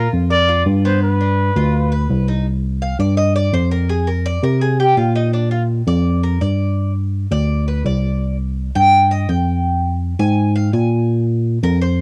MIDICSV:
0, 0, Header, 1, 4, 480
1, 0, Start_track
1, 0, Key_signature, -3, "minor"
1, 0, Tempo, 359712
1, 1364, Time_signature, 4, 2, 24, 8
1, 16030, End_track
2, 0, Start_track
2, 0, Title_t, "Trumpet"
2, 0, Program_c, 0, 56
2, 417, Note_on_c, 0, 74, 108
2, 857, Note_off_c, 0, 74, 0
2, 1141, Note_on_c, 0, 72, 78
2, 1356, Note_off_c, 0, 72, 0
2, 1376, Note_on_c, 0, 71, 85
2, 2752, Note_off_c, 0, 71, 0
2, 16030, End_track
3, 0, Start_track
3, 0, Title_t, "Cuban tres"
3, 0, Program_c, 1, 25
3, 0, Note_on_c, 1, 65, 70
3, 396, Note_off_c, 1, 65, 0
3, 406, Note_on_c, 1, 70, 79
3, 639, Note_off_c, 1, 70, 0
3, 645, Note_on_c, 1, 65, 71
3, 1110, Note_off_c, 1, 65, 0
3, 1133, Note_on_c, 1, 59, 91
3, 1593, Note_off_c, 1, 59, 0
3, 1609, Note_on_c, 1, 62, 68
3, 2070, Note_off_c, 1, 62, 0
3, 2084, Note_on_c, 1, 65, 83
3, 2547, Note_off_c, 1, 65, 0
3, 2559, Note_on_c, 1, 71, 83
3, 3024, Note_off_c, 1, 71, 0
3, 3042, Note_on_c, 1, 63, 66
3, 3273, Note_off_c, 1, 63, 0
3, 3760, Note_on_c, 1, 77, 78
3, 3992, Note_off_c, 1, 77, 0
3, 3999, Note_on_c, 1, 74, 91
3, 4227, Note_off_c, 1, 74, 0
3, 4232, Note_on_c, 1, 75, 91
3, 4467, Note_off_c, 1, 75, 0
3, 4479, Note_on_c, 1, 74, 90
3, 4711, Note_off_c, 1, 74, 0
3, 4718, Note_on_c, 1, 72, 78
3, 4950, Note_off_c, 1, 72, 0
3, 4957, Note_on_c, 1, 70, 82
3, 5190, Note_off_c, 1, 70, 0
3, 5198, Note_on_c, 1, 68, 78
3, 5430, Note_off_c, 1, 68, 0
3, 5433, Note_on_c, 1, 70, 70
3, 5668, Note_off_c, 1, 70, 0
3, 5679, Note_on_c, 1, 74, 102
3, 5911, Note_off_c, 1, 74, 0
3, 5917, Note_on_c, 1, 70, 86
3, 6150, Note_off_c, 1, 70, 0
3, 6157, Note_on_c, 1, 68, 77
3, 6390, Note_off_c, 1, 68, 0
3, 6404, Note_on_c, 1, 67, 84
3, 6630, Note_off_c, 1, 67, 0
3, 6635, Note_on_c, 1, 65, 67
3, 6869, Note_off_c, 1, 65, 0
3, 6880, Note_on_c, 1, 63, 82
3, 7111, Note_off_c, 1, 63, 0
3, 7118, Note_on_c, 1, 62, 63
3, 7350, Note_off_c, 1, 62, 0
3, 7355, Note_on_c, 1, 65, 69
3, 7500, Note_off_c, 1, 65, 0
3, 7842, Note_on_c, 1, 74, 82
3, 8286, Note_off_c, 1, 74, 0
3, 8319, Note_on_c, 1, 70, 70
3, 8551, Note_off_c, 1, 70, 0
3, 8557, Note_on_c, 1, 74, 74
3, 9227, Note_off_c, 1, 74, 0
3, 9762, Note_on_c, 1, 74, 92
3, 10207, Note_off_c, 1, 74, 0
3, 10247, Note_on_c, 1, 71, 62
3, 10476, Note_off_c, 1, 71, 0
3, 10485, Note_on_c, 1, 74, 68
3, 11152, Note_off_c, 1, 74, 0
3, 11678, Note_on_c, 1, 79, 104
3, 12126, Note_off_c, 1, 79, 0
3, 12155, Note_on_c, 1, 75, 77
3, 12391, Note_off_c, 1, 75, 0
3, 12394, Note_on_c, 1, 79, 69
3, 13068, Note_off_c, 1, 79, 0
3, 13602, Note_on_c, 1, 80, 99
3, 14049, Note_off_c, 1, 80, 0
3, 14085, Note_on_c, 1, 77, 81
3, 14317, Note_off_c, 1, 77, 0
3, 14322, Note_on_c, 1, 80, 67
3, 14993, Note_off_c, 1, 80, 0
3, 15524, Note_on_c, 1, 70, 95
3, 15758, Note_off_c, 1, 70, 0
3, 15766, Note_on_c, 1, 72, 77
3, 16030, Note_off_c, 1, 72, 0
3, 16030, End_track
4, 0, Start_track
4, 0, Title_t, "Tine electric piano"
4, 0, Program_c, 2, 4
4, 167, Note_on_c, 2, 41, 86
4, 835, Note_off_c, 2, 41, 0
4, 881, Note_on_c, 2, 43, 100
4, 2002, Note_off_c, 2, 43, 0
4, 2079, Note_on_c, 2, 38, 97
4, 2748, Note_off_c, 2, 38, 0
4, 2799, Note_on_c, 2, 36, 89
4, 3920, Note_off_c, 2, 36, 0
4, 3992, Note_on_c, 2, 43, 94
4, 4664, Note_off_c, 2, 43, 0
4, 4709, Note_on_c, 2, 41, 88
4, 5835, Note_off_c, 2, 41, 0
4, 5909, Note_on_c, 2, 48, 89
4, 6582, Note_off_c, 2, 48, 0
4, 6635, Note_on_c, 2, 46, 89
4, 7759, Note_off_c, 2, 46, 0
4, 7833, Note_on_c, 2, 41, 99
4, 8505, Note_off_c, 2, 41, 0
4, 8557, Note_on_c, 2, 43, 76
4, 9680, Note_off_c, 2, 43, 0
4, 9754, Note_on_c, 2, 38, 83
4, 10426, Note_off_c, 2, 38, 0
4, 10471, Note_on_c, 2, 36, 86
4, 11599, Note_off_c, 2, 36, 0
4, 11675, Note_on_c, 2, 43, 81
4, 12348, Note_off_c, 2, 43, 0
4, 12396, Note_on_c, 2, 41, 87
4, 13523, Note_off_c, 2, 41, 0
4, 13601, Note_on_c, 2, 44, 96
4, 14272, Note_off_c, 2, 44, 0
4, 14323, Note_on_c, 2, 46, 92
4, 15448, Note_off_c, 2, 46, 0
4, 15523, Note_on_c, 2, 41, 99
4, 16030, Note_off_c, 2, 41, 0
4, 16030, End_track
0, 0, End_of_file